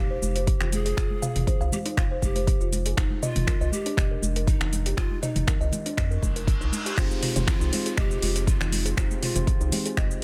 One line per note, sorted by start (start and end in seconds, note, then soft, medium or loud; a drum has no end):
0.00 0.18 F1 medium
0.00 0.69 G4 loud
0.11 0.21 C5 medium
0.22 0.57 F1 medium
0.22 high conga loud
0.22 shaker medium
0.36 0.46 C5 medium
0.36 closed hi-hat soft
0.36 shaker soft
0.47 kick loud
0.47 closed hi-hat medium
0.47 shaker medium
0.60 0.94 F1 loud
0.60 0.71 F4 medium
0.60 finger snap medium
0.60 low conga loud
0.60 shaker soft
0.72 1.69 G#4 loud
0.72 closed hi-hat soft
0.72 high conga medium
0.72 shaker loud
0.85 0.96 G#4 medium
0.85 closed hi-hat medium
0.85 shaker soft
0.97 1.08 F1 medium
0.97 1.10 F4 medium
0.97 finger snap medium
0.97 kick loud
0.97 closed hi-hat medium
0.97 shaker medium
1.10 high conga medium
1.22 1.34 F5 loud
1.22 mid tom loud
1.22 shaker medium
1.36 1.45 F1 medium
1.36 closed hi-hat medium
1.36 mid tom loud
1.36 low conga medium
1.36 shaker soft
1.47 1.59 C5 medium
1.47 kick loud
1.47 closed hi-hat medium
1.47 low conga loud
1.47 shaker medium
1.60 1.70 C2 medium
1.60 1.67 F5 loud
1.60 shaker soft
1.72 1.79 G4 medium
1.72 high conga loud
1.72 low conga medium
1.72 shaker medium
1.86 1.96 D#4 loud
1.86 closed hi-hat soft
1.86 shaker soft
1.97 2.18 F1 medium
1.97 2.04 F4 medium
1.97 2.09 F5 loud
1.97 finger snap medium
1.97 kick loud
1.97 closed hi-hat medium
1.97 shaker soft
2.11 2.21 C5 medium
2.22 2.56 F1 medium
2.22 2.69 G4 medium
2.22 kick medium
2.22 high conga loud
2.22 shaker medium
2.35 2.46 C5 medium
2.35 closed hi-hat soft
2.35 high conga medium
2.35 shaker soft
2.47 kick loud
2.47 closed hi-hat medium
2.47 shaker medium
2.61 2.94 F1 loud
2.61 2.71 F4 medium
2.61 shaker soft
2.72 closed hi-hat soft
2.72 high conga medium
2.72 shaker medium
2.86 2.96 G#4 medium
2.86 closed hi-hat medium
2.86 shaker soft
2.97 3.08 F1 loud
2.97 3.10 D#4 loud
2.97 3.21 D#4 medium
2.97 finger snap medium
2.97 kick loud
2.97 closed hi-hat medium
2.97 shaker medium
3.10 high conga medium
3.23 3.74 F4 loud
3.23 3.35 D#5 loud
3.23 mid tom medium
3.23 shaker medium
3.35 3.45 F1 medium
3.35 closed hi-hat medium
3.35 mid tom loud
3.35 high conga medium
3.35 low conga medium
3.35 shaker soft
3.47 3.60 A#4 medium
3.47 finger snap medium
3.47 kick loud
3.47 closed hi-hat medium
3.47 low conga loud
3.47 shaker soft
3.61 3.70 C2 medium
3.61 3.67 D#5 loud
3.61 shaker soft
3.72 4.23 G4 loud
3.72 high conga medium
3.72 shaker medium
3.86 3.97 D4 loud
3.86 closed hi-hat soft
3.86 shaker soft
3.97 4.18 F1 medium
3.97 4.10 D#5 loud
3.97 finger snap medium
3.97 kick loud
3.97 closed hi-hat medium
3.97 mid tom medium
3.97 high conga medium
3.97 shaker soft
4.11 4.22 A#4 medium
4.22 4.57 F1 medium
4.22 high conga loud
4.22 shaker medium
4.36 4.47 A#4 medium
4.36 closed hi-hat soft
4.36 shaker soft
4.47 4.98 D#4 loud
4.47 kick loud
4.47 closed hi-hat medium
4.47 shaker medium
4.60 4.94 F1 loud
4.60 4.71 D#4 medium
4.60 finger snap medium
4.60 low conga medium
4.60 shaker soft
4.73 closed hi-hat medium
4.73 high conga medium
4.73 shaker medium
4.86 4.97 G4 medium
4.86 closed hi-hat medium
4.86 shaker soft
4.97 5.08 F1 loud
4.97 5.10 D#4 loud
4.97 5.23 F4 loud
4.97 finger snap loud
4.97 kick loud
4.97 closed hi-hat medium
4.97 shaker medium
5.11 high conga medium
5.22 5.72 D#4 loud
5.22 5.34 D#5 loud
5.22 closed hi-hat soft
5.22 mid tom medium
5.22 shaker medium
5.35 5.45 F1 medium
5.35 closed hi-hat soft
5.35 mid tom medium
5.35 high conga medium
5.35 low conga medium
5.35 shaker soft
5.47 5.59 A#4 medium
5.47 finger snap medium
5.47 kick loud
5.47 closed hi-hat medium
5.47 low conga loud
5.47 shaker medium
5.61 5.70 C2 medium
5.61 5.67 D#5 loud
5.61 shaker soft
5.72 closed hi-hat soft
5.72 high conga loud
5.72 low conga medium
5.72 shaker medium
5.86 5.96 D4 loud
5.86 closed hi-hat soft
5.86 shaker soft
5.97 6.18 F2 medium
5.97 6.09 D#5 loud
5.97 finger snap medium
5.97 kick loud
5.97 closed hi-hat medium
5.97 reverse cymbal medium
5.97 shaker soft
6.11 6.21 A#4 medium
6.11 shaker soft
6.22 6.62 F1 loud
6.22 kick medium
6.22 high conga loud
6.22 shaker medium
6.36 6.46 A#4 medium
6.36 closed hi-hat soft
6.36 shaker soft
6.47 kick loud
6.47 closed hi-hat medium
6.47 shaker medium
6.61 6.70 C2 loud
6.61 6.71 D#4 medium
6.61 shaker soft
6.72 closed hi-hat soft
6.72 high conga medium
6.72 shaker medium
6.86 6.96 G4 medium
6.86 closed hi-hat medium
6.86 shaker soft
6.97 7.08 F1 loud
6.97 7.33 G#3 medium
6.97 7.33 C4 medium
6.97 7.50 D#4 loud
6.97 7.09 F4 loud
6.97 7.33 F4 medium
6.97 7.33 G4 medium
6.97 7.33 C5 loud
6.97 finger snap loud
6.97 kick loud
6.97 closed hi-hat soft
6.97 crash loud
6.97 downlifter medium
6.97 shaker loud
7.11 high conga medium
7.11 shaker medium
7.22 7.30 F4 medium
7.22 open hi-hat loud
7.22 mid tom medium
7.22 shaker medium
7.36 7.45 F1 medium
7.36 7.70 G#3 medium
7.36 7.46 C4 medium
7.36 7.70 C4 medium
7.36 7.70 F4 medium
7.36 7.70 G4 medium
7.36 7.70 C5 loud
7.36 closed hi-hat medium
7.36 mid tom loud
7.36 high conga medium
7.36 low conga medium
7.36 shaker medium
7.47 8.00 F4 loud
7.47 finger snap medium
7.47 kick loud
7.47 closed hi-hat soft
7.47 low conga loud
7.47 shaker medium
7.61 7.70 C2 medium
7.61 7.67 D#4 loud
7.61 shaker medium
7.73 8.95 G#3 medium
7.73 8.95 C4 medium
7.73 8.95 F4 medium
7.73 8.95 G4 medium
7.73 8.95 C5 medium
7.73 open hi-hat medium
7.73 high conga loud
7.73 shaker medium
7.86 7.92 G#4 medium
7.86 closed hi-hat medium
7.86 shaker medium
7.97 8.18 F1 medium
7.97 8.48 G4 loud
7.97 8.09 D#5 loud
7.97 finger snap medium
7.97 kick loud
7.97 closed hi-hat soft
7.97 mid tom medium
7.97 high conga medium
7.97 shaker medium
8.11 shaker medium
8.22 8.57 F1 loud
8.22 8.30 F4 medium
8.22 open hi-hat medium
8.22 high conga loud
8.22 shaker medium
8.36 8.46 C4 medium
8.36 closed hi-hat medium
8.36 shaker medium
8.47 8.99 F4 loud
8.47 kick loud
8.47 closed hi-hat soft
8.47 shaker loud
8.61 8.94 F1 loud
8.61 8.67 D#4 loud
8.61 finger snap loud
8.61 low conga loud
8.61 shaker medium
8.72 open hi-hat loud
8.72 high conga medium
8.72 shaker loud
8.85 8.92 G#4 medium
8.85 closed hi-hat medium
8.85 shaker medium
8.97 9.08 F1 loud
8.97 9.33 G#3 medium
8.97 9.33 C4 medium
8.97 9.22 D#4 loud
8.97 9.09 F4 loud
8.97 9.33 F4 medium
8.97 9.33 G4 medium
8.97 9.33 C5 medium
8.97 finger snap loud
8.97 kick loud
8.97 closed hi-hat soft
8.97 shaker loud
9.11 high conga medium
9.11 shaker medium
9.22 9.30 F4 medium
9.22 9.69 F4 loud
9.22 open hi-hat medium
9.22 mid tom medium
9.22 shaker medium
9.35 9.45 F1 medium
9.35 9.70 G#3 loud
9.35 9.46 C4 medium
9.35 9.70 C4 medium
9.35 9.70 F4 medium
9.35 9.70 G4 medium
9.35 9.70 C5 loud
9.35 closed hi-hat medium
9.35 mid tom medium
9.35 high conga medium
9.35 low conga medium
9.35 shaker loud
9.47 kick loud
9.47 closed hi-hat soft
9.47 low conga loud
9.47 shaker medium
9.61 9.70 C2 medium
9.61 9.67 D#4 loud
9.61 shaker medium
9.72 10.24 G#3 medium
9.72 10.24 C4 medium
9.72 10.24 F4 medium
9.72 10.24 G4 medium
9.72 10.24 C5 medium
9.72 open hi-hat medium
9.72 high conga loud
9.72 low conga medium
9.72 shaker medium
9.86 9.92 G#4 medium
9.86 closed hi-hat medium
9.86 shaker medium
9.97 10.18 F1 medium
9.97 10.09 D#5 loud
9.97 finger snap medium
9.97 kick loud
9.97 closed hi-hat soft
9.97 shaker medium
10.11 shaker medium